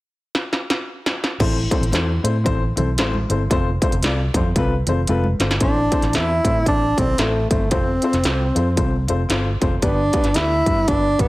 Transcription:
0.35 snare
0.53 snare
0.70 snare
1.06 snare
1.24 snare
1.40 A1 A2 C4 E4 A4 C5, kick, crash, muted conga
1.70 C4 E4 A4 C5, kick, closed hi-hat, muted conga
1.81 A1, closed hi-hat
1.91 E2 C4 E4 A4 C5, snare, closed hi-hat, high conga
2.23 A2 C4 E4 A4 C5, closed hi-hat
2.44 A1 C4 E4 A4 C5, kick, closed hi-hat, muted conga
2.76 B1 C4 E4 A4 C5, closed hi-hat, muted conga, low conga
2.98 A1 C4 E4 A4 C5, snare, closed hi-hat, high conga
3.14 high conga
3.29 G1 C4 E4 A4 C5, closed hi-hat
3.50 F1 C4 F4 A4 C5, kick, closed hi-hat, muted conga
3.81 C4 F4 A4 C5, kick, closed hi-hat, muted conga
3.92 F1, closed hi-hat
4.02 C2 C4 F4 A4 D5, snare, closed hi-hat, high conga
4.34 F2 C4 F4 A4 C5, kick, closed hi-hat
4.56 C2 C4 F4 A4 B4, kick, closed hi-hat, muted conga
4.87 F1 C4 F4 A4 C5, closed hi-hat, muted conga, low conga
5.07 F1 C4 F4 A4 B4, closed hi-hat, high conga
5.24 high conga
5.39 G1 C4 F4 A4 C5, snare, closed hi-hat
5.51 snare
5.60 A1 A2 C4 D4 E4 A4 C5, kick, closed hi-hat
5.91 C4 E4 A4 C5, kick, closed hi-hat
6.02 A1, snare, closed hi-hat
6.13 E2 C4 E4 A4 C5, snare, closed hi-hat
6.44 A2 C4 E4 A4 C5, kick, closed hi-hat
6.66 A1 C4 D4 E4 A4 C5, kick, closed hi-hat
6.97 B1 C4 E4 A4 D5, kick, closed hi-hat
7.18 A1 A3 C4 E4 A4 C5, snare, closed hi-hat
7.50 G1 A3 C4 E4 A4 C5, kick, closed hi-hat
7.70 F1 C4 F4 A4 C5, kick, closed hi-hat
8.02 C4 F4 A4 C5, closed hi-hat
8.13 F1, snare, closed hi-hat
8.24 C2 C4 F4 A4 C5, snare, closed hi-hat
8.55 F2 C4 F4 A4 C5, closed hi-hat
8.76 C2 C4 F4 A4 C5, kick, closed hi-hat
9.08 F1 C4 F4 A4 C5, closed hi-hat
9.29 G1 C4 F4 A4 C5, snare, closed hi-hat
9.60 F1 C4 F4 A4 C5, kick, closed hi-hat
9.82 G1 G2 B3 D4 G4 B4, kick, closed hi-hat
10.12 B3 D4 G4 B4, kick, closed hi-hat
10.24 G1, snare, closed hi-hat
10.34 D2 B3 D4 E4 G4 A4, snare, closed hi-hat
10.66 G2 B3 D4 G4 B4, kick, closed hi-hat
10.87 G1 B3 D4 G4 B4, kick, closed hi-hat
11.18 A1 B3 D4 G4 B4, kick, closed hi-hat

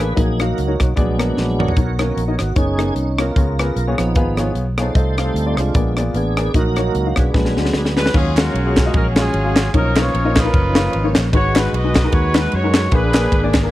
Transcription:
Already playing: A1 G#4 B4
0.00 A#3 D4 G#4 B4
0.15 A#1 A#2 F#3 A#3 D#4 F#4 G#4 D#5, kick, closed hi-hat
0.39 A#3 D#4 F#4 A#4 F5, cross-stick, closed hi-hat
0.58 C#2, closed hi-hat
0.68 A#3 D#4 F#4 C#5
0.80 B1, kick, cross-stick, closed hi-hat
0.96 A#1 A#2 F#3 G#3 B3 D4 F#4 G#4 D5, kick, closed hi-hat
1.19 B3 F#4 G#4 A#4, cross-stick, closed hi-hat
1.37 A#1, snare
1.59 B3 F#4 G#4 A#4 C#5 D5, mid tom
1.68 floor tom
1.77 B1 B2 B3 D#4 A#4 C#5, kick, closed hi-hat
1.99 D#3 A#3 B3 C#4 D#4 A#4 C#5, cross-stick, closed hi-hat
2.17 A#1, closed hi-hat
2.28 B3 D#4 A#4 D#5
2.39 G#1 F#4, cross-stick, closed hi-hat
2.56 F#1 B3 C#4 D#4 G#4 A#4 C#5, kick, closed hi-hat
2.79 B3 D#4 A#4 D#5, cross-stick, closed hi-hat
2.95 C2, closed hi-hat
3.19 B3 D#4 F4 A#4 C#5, cross-stick, closed hi-hat
3.36 C#2 C#3 B3 F4 G#4 C#5, kick, closed hi-hat
3.59 B3 F4 G#4 B4, cross-stick, closed hi-hat
3.76 B1, closed hi-hat
3.87 B3 F4 G#4 C#5
3.98 A#1 F3 B3 D#4, cross-stick, closed hi-hat
4.15 G#1 B3 F4 G#4 B4, kick, closed hi-hat
4.37 B3 F4 G#4 C#5, cross-stick, closed hi-hat
4.55 B1, closed hi-hat
4.78 B3 D#4 F4 G#4 A4 C5 C#5, cross-stick, closed hi-hat
4.95 C2 C3 G3 A3 C4 D#4 F4 A4 D#5, kick, closed hi-hat
5.18 C4 F4 A4 F5, cross-stick, closed hi-hat
5.34 D2, closed hi-hat
5.46 C4 F4 A4 D5
5.57 C2 G#3 D4 F4, cross-stick, closed hi-hat
5.74 A#1 A#2 G#3 B3 D4 G#4 A#4 D5, kick, closed hi-hat
5.97 B3 G#4 A#4 D5, cross-stick, closed hi-hat
6.14 A1 B3 D4 G#4, closed hi-hat
6.37 B3 G#4 A#4 D5, cross-stick, closed hi-hat
6.54 A#1 A#2 F#3 A#3 D#4 F#4 D#5, kick, closed hi-hat
6.59 A#4
6.76 A#3 D#4 F#4 C#5, cross-stick, closed hi-hat
6.95 C#2, closed hi-hat
7.06 A#3 D#4 F#4 A#4 F5
7.16 B1 D4 G#4 B4, kick, cross-stick, closed hi-hat
7.33 A#1 A#2 F#3 G#3 B3 D4 F#4 B4, kick, snare
7.45 snare
7.56 D2 G#3 D4 F#4 B4, snare
7.65 snare
7.73 D2, snare
7.85 snare
7.96 G#3 D4 F#4 B4, snare
8.06 snare
8.13 D#2 D#3 F#3 G#3 C#4 F4 F#4 G#4 C#5 F5, kick, crash
8.36 G#3 C#4 F4 F#4 A#4 C#5, snare, clap, ride bell
8.54 B1, ride bell
8.66 G#3 F4 F#4 G#4
8.77 kick, snare, clap, ride bell
8.86 G#3 F4 F#4 D#5
8.94 A#1 C#4 F#4 A#4, kick, ride bell
9.16 G#3 C#4 F4 F#4 G#4 C#5, snare, clap, ride bell
9.34 G#1, ride bell
9.45 G#3 F4 F#4 G#4
9.56 snare, clap, ride bell
9.74 B1 B2 F3 A#3 C#4 D#4 F4 A#4 C#5, kick, ride bell
9.96 A#3 D#4 F4 B4, snare, clap, ride bell
10.00 F4 A#4 C#5
10.14 A#1, ride bell
10.25 A#3 D#4 F4 D#5
10.36 D#4 F4 B4, kick, snare, clap, ride bell
10.45 A#3 D#4 F4 A#4
10.54 F#1, kick, ride bell
10.75 A#3 D#4 F4 C#5, snare, clap, ride bell
10.93 G#1, ride bell
11.04 A#3 D#4 F4 C#5
11.15 A#1, snare, clap, ride bell
11.32 G#1 G#2 G#3 D#4 F#4 B4 C#5, kick, ride bell
11.55 G#3 D#4 F#4 B4, snare, clap, ride bell
11.73 B1 F#4 B4 D#5, ride bell
11.84 G#3 D#4 F#4 B4
11.96 kick, snare, clap, ride bell
12.04 G#3 D#4 F#4 A#4
12.12 D#2 F#4 C#5, kick, ride bell
12.35 G#3 D#4 F#4 B4, snare, clap, ride bell
12.52 F#2 F#4 C#5, ride bell
12.63 G#3 D#4 F#4 A#4
12.74 snare, clap, ride bell
12.91 A#1 A#2 A#3 D4 G#4 B4, kick, ride bell
13.14 A#3 D4 G#4 B4, snare, clap, ride bell
13.32 G#1, kick, ride bell
13.43 A#3 D4 G#4 D5
13.54 kick, snare, clap, ride bell
13.63 A#3 D4 G#4 A#4

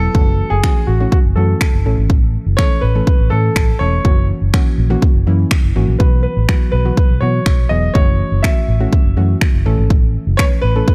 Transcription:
Already playing: A4
0.15 F#1 E3 A3 C#4 F#4, kick
0.50 F#1 G#4
0.63 E3 A3 C#4 F#4, finger snap, kick
0.87 A1 F#4
1.00 E3 A3 C#4 F#4
1.11 F#4, kick
1.24 F#1
1.36 F#2 E3 A3 C#4 F#4 A4
1.61 finger snap, kick
1.73 F#1
1.85 A1 E3 A3 C#4 A4
1.97 G#1
2.10 A1, kick
2.46 F#1
2.57 E3 A3 C#4 A4 C#5, finger snap, kick
2.81 A1 B4
2.95 E3 A3 C#4 A4
3.07 kick
3.19 A1
3.30 A2 E3 A3 C#4 A4
3.56 A1, finger snap, kick
3.79 E1 E3 A3 C#4 A4 C#5
4.05 F#1 E3 A#3 C#4 F#4, kick
4.41 F#1
4.53 E3 A#3 C#4 F#4, finger snap, kick
4.78 A#1
4.90 E3 A#3 C#4 F#4
5.02 kick
5.15 F#1
5.27 F#2 E3 A#3 C#4 E4
5.51 finger snap, kick
5.64 F#1
5.75 G#1 E3 A#3 C#4 F#4
5.88 A#1
5.99 B1 E3 F#3 B3 F#4 B4, kick
6.23 B4
6.37 A1
6.48 E3 F#3 B3 F#4, finger snap, kick
6.72 B1 B4
6.85 E3 F#3 B3 F#4
6.97 kick
7.10 B1
7.21 B2 E3 F#3 B3 F#4 C#5
7.46 B1, finger snap, kick
7.69 E1 E3 F#3 B3 G#4 D#5
7.94 F#1 E3 A3 C#4 F#4 C#5, kick
8.32 F#1
8.43 E3 A3 C#4 F#4 E5, finger snap, kick
8.68 A1
8.80 E3 A3 C#4 F#4
8.93 kick
9.05 F#1
9.17 F#2 E3 A3 C#4 F#4
9.41 finger snap, kick
9.54 F#1
9.65 A1 E3 A3 C#4 A4
9.78 G#1
9.90 A1, kick
10.27 F#1
10.37 E3 A3 C#4 B4 C#5, finger snap, kick
10.62 A1 B4
10.75 E3 A3 C#4 A4
10.88 kick

